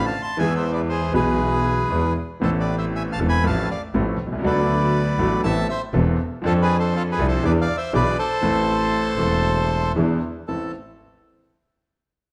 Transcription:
Already playing: double bass A1, grand piano C4 F4
0.06 bandoneon F5 A5
0.22 bandoneon A5 C6
0.37 double bass E2, grand piano E2 E3 G#3 B3 G#4, bandoneon G#5
0.41 bandoneon E5
0.55 bandoneon C5 E5
0.73 bandoneon B4 D5
0.89 bandoneon G#4 C5
1.12 grand piano B1 B2 E3 G#3 B3, double bass B1, bandoneon B4
1.16 grand piano G#4, bandoneon G#4
1.90 grand piano E2 E3 G#3 B3 G#4, double bass E2
2.40 grand piano A1 A2 E3 B3 C4, double bass A1, bandoneon A4 C5
2.44 grand piano A4
2.60 bandoneon B4 D5
2.78 bandoneon C5 E5
2.95 bandoneon E5 G#5
3.12 bandoneon F5 A5
3.18 double bass E1, grand piano E1 E2 E3 B3 C4 A4
3.29 bandoneon G#5 B5
3.44 grand piano A1 A2 F3 A3 C4 A4, double bass A1, bandoneon F5 A5
3.71 bandoneon D5 F5
3.94 double bass A1, grand piano A1 A2 F3 A3 C4 A4
4.20 double bass C2
4.27 grand piano B1
4.32 grand piano C2
4.39 grand piano C#2 F#3
4.44 grand piano D2 D3 B3 D4 A4, double bass D2, bandoneon B4 D5
5.19 grand piano A1 A2 F#3 B3 D4 A4, double bass A1
5.44 double bass A1, grand piano A1 A2 E3 B3 C4 A4, bandoneon E5 A5
5.69 bandoneon C5 E5
5.93 grand piano E1 E2 E3 B3 C4 A4, double bass E1
6.43 grand piano F2 F3 C4 D4 A4, double bass F2, bandoneon F4 A4
6.62 bandoneon G#4 B4
6.79 bandoneon A4 C5
6.95 bandoneon F4 A4
7.12 bandoneon G#4 B4
7.18 double bass C2, grand piano C2 C3 F3 C4 D4 A4
7.28 bandoneon A4 C5
7.43 grand piano E2 E3 B3 D4 G#4, double bass E2, bandoneon B4 D5
7.61 bandoneon D5 F5
7.77 bandoneon C5 E5
7.93 grand piano B1 B2 E3 B3 D4 G#4, double bass B1, bandoneon B4 D5
8.19 bandoneon A4 C5
8.41 grand piano A1 A2 E3 A3 C4 A4, double bass A1
9.17 grand piano E1 E2 E3 A3 C4 A4, double bass E1
9.96 double bass E2, grand piano E2 E3 B3 D4 G#4
10.48 double bass A1, grand piano A1 C4 E4 A4, bandoneon A4

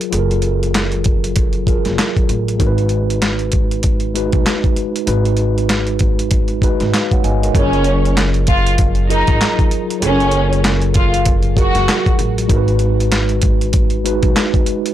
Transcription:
Already playing: tine electric piano F#3 F4 G#4 A#4
0.01 closed hi-hat
0.10 upright bass F#1, tine electric piano F#3 F4 G#4 A4, closed hi-hat
0.19 tine electric piano A#4
0.31 closed hi-hat
0.42 closed hi-hat
0.63 closed hi-hat
0.74 snare, clap, closed hi-hat
0.92 closed hi-hat
1.04 kick, closed hi-hat
1.24 closed hi-hat
1.36 kick, closed hi-hat
1.53 closed hi-hat
1.66 tine electric piano F#3 F4 G#4 A#4, kick, closed hi-hat
1.85 upright bass F#1, snare, closed hi-hat
1.99 snare, clap, closed hi-hat
2.17 kick, closed hi-hat
2.29 upright bass A1, closed hi-hat
2.48 closed hi-hat
2.58 upright bass G#1, tine electric piano G#3 D#4 F#4 A#4, kick, closed hi-hat
2.67 tine electric piano B4
2.78 closed hi-hat
2.89 closed hi-hat
3.10 closed hi-hat
3.22 snare, clap, closed hi-hat
3.39 closed hi-hat
3.52 kick, closed hi-hat
3.71 closed hi-hat
3.83 kick, closed hi-hat
4.00 closed hi-hat
4.14 tine electric piano G#3 D#4 F#4 B4, closed hi-hat
4.32 upright bass B1, kick, closed hi-hat
4.46 snare, clap, closed hi-hat
4.64 kick, closed hi-hat
4.76 closed hi-hat
4.96 closed hi-hat
5.06 upright bass G#1, tine electric piano G#3 D#4 F#4 B4, closed hi-hat
5.25 closed hi-hat
5.37 closed hi-hat
5.58 closed hi-hat
5.69 snare, clap, closed hi-hat
5.87 closed hi-hat
5.99 kick, closed hi-hat
6.19 closed hi-hat
6.31 kick, closed hi-hat
6.48 closed hi-hat
6.62 tine electric piano G#3 D#4 F#4 B4, kick, closed hi-hat
6.80 upright bass G#1, snare, closed hi-hat
6.94 tine electric piano B4 F5, snare, clap, closed hi-hat
7.12 tine electric piano C#5 F#5, kick, closed hi-hat
7.24 upright bass G1, tine electric piano D#5 G#5, closed hi-hat
7.42 tine electric piano A#4 D#5, closed hi-hat
7.54 upright bass F#1, tine electric piano F#3 F4 G#4 A#4, violin section C#4 C#5, kick, closed hi-hat
7.73 closed hi-hat
7.84 closed hi-hat
8.05 closed hi-hat
8.17 snare, clap, closed hi-hat
8.34 closed hi-hat
8.47 violin section F4 F5, kick, closed hi-hat
8.67 closed hi-hat
8.78 kick, closed hi-hat
8.95 closed hi-hat
9.08 tine electric piano F#3 F4 G#4 A#4, violin section D#4 D#5, closed hi-hat
9.27 upright bass G#1, kick, closed hi-hat
9.41 snare, clap, closed hi-hat
9.59 kick, closed hi-hat
9.71 closed hi-hat
9.90 closed hi-hat
10.00 upright bass F#1, tine electric piano F#3 F4 G#4 A4, closed hi-hat
10.04 violin section C#4 C#5
10.09 tine electric piano A#4
10.20 closed hi-hat
10.31 closed hi-hat
10.53 closed hi-hat
10.64 snare, clap, closed hi-hat
10.82 closed hi-hat
10.94 violin section F4 F5, kick, closed hi-hat
11.14 closed hi-hat
11.25 kick, closed hi-hat
11.43 closed hi-hat
11.56 tine electric piano F#3 F#4 G#4 A#4, violin section F#4 F#5, kick, closed hi-hat
11.75 upright bass F#1, snare, closed hi-hat
11.89 snare, clap, closed hi-hat
12.06 kick, closed hi-hat
12.19 upright bass A1, closed hi-hat
12.38 closed hi-hat
12.48 upright bass G#1, tine electric piano G#3 D#4 F#4 A#4, kick, closed hi-hat
12.56 tine electric piano B4
12.68 closed hi-hat
12.79 closed hi-hat
13.00 closed hi-hat
13.12 snare, clap, closed hi-hat
13.29 closed hi-hat
13.42 kick, closed hi-hat
13.61 closed hi-hat
13.73 kick, closed hi-hat
13.90 closed hi-hat
14.04 tine electric piano G#3 D#4 F#4 B4, closed hi-hat
14.23 upright bass B1, kick, closed hi-hat
14.36 snare, clap, closed hi-hat
14.54 kick, closed hi-hat
14.66 closed hi-hat
14.86 closed hi-hat

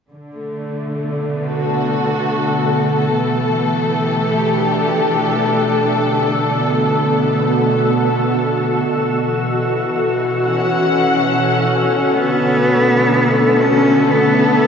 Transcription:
0.10 synth drone B2 A4, string section D3
0.35 string section A3
1.02 string section B3
1.48 string section F#4 A4
3.15 string section E3
4.02 string section G4
4.48 string section D4
6.12 string section D3
6.41 string section B3
7.45 string section F#4
9.27 string section E3
10.46 string section C#4 F#5
12.10 string section D3, cello B3
12.53 string section A3
13.39 string section B3
13.45 string section A4
13.61 cello C#4
14.11 cello B3

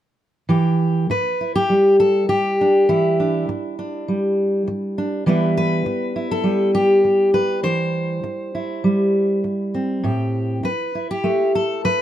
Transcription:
0.49 steel-string acoustic guitar E3 G4
1.10 steel-string acoustic guitar B4, muted steel-string acoustic guitar stroke
1.41 steel-string acoustic guitar E4
1.55 steel-string acoustic guitar G4
1.69 steel-string acoustic guitar G3
2.00 steel-string acoustic guitar A4
2.29 steel-string acoustic guitar G4, muted steel-string acoustic guitar stroke
2.61 steel-string acoustic guitar D4
2.89 steel-string acoustic guitar E3 E4
3.20 steel-string acoustic guitar D4
3.49 muted steel-string acoustic guitar stroke
3.79 steel-string acoustic guitar D4
4.08 steel-string acoustic guitar G3
4.67 muted steel-string acoustic guitar stroke
4.98 steel-string acoustic guitar D4
5.26 steel-string acoustic guitar E3 G3 B3 E4 B4
5.57 steel-string acoustic guitar B4
5.86 muted steel-string acoustic guitar stroke
6.16 steel-string acoustic guitar E4
6.31 steel-string acoustic guitar A4
6.44 steel-string acoustic guitar G3
6.75 steel-string acoustic guitar G4
7.04 muted steel-string acoustic guitar stroke
7.34 steel-string acoustic guitar B4
7.63 steel-string acoustic guitar E3 C5
8.24 muted steel-string acoustic guitar stroke
8.55 steel-string acoustic guitar E4
8.84 steel-string acoustic guitar G3
9.44 muted steel-string acoustic guitar stroke
9.74 steel-string acoustic guitar C4
10.04 steel-string acoustic guitar A2 G4
10.63 steel-string acoustic guitar B4, muted steel-string acoustic guitar stroke
10.95 steel-string acoustic guitar E4
11.11 steel-string acoustic guitar G4
11.24 steel-string acoustic guitar A3
11.55 steel-string acoustic guitar A4
11.84 steel-string acoustic guitar B4, muted steel-string acoustic guitar stroke

